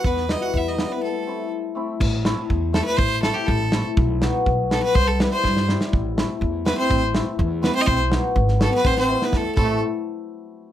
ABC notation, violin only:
X:1
M:2/4
L:1/16
Q:1/4=123
K:none
V:1 name="Violin"
B2 ^d ^f e d2 B | A4 z4 | z6 A B | c2 A G A3 z |
z6 A B | c A B c3 z2 | z6 B c- | c z4 z B c/2 ^d/2 |
c z4 z A B | c c2 B A2 A2 | z8 |]